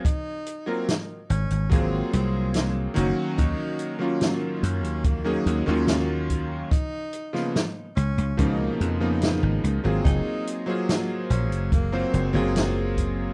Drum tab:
HH |x-x-x-xxx-x-x-x-|x-x-x-xxx-x-x-x-|x-x-x-xxx-x-x-x-|x-x-x-xxx-x-x-x-|
SD |----o-------o---|----o-------o---|---oo-------o---|----o-------o---|
BD |o-------o-------|o-------o-----o-|o-------o-------|o-------o-----o-|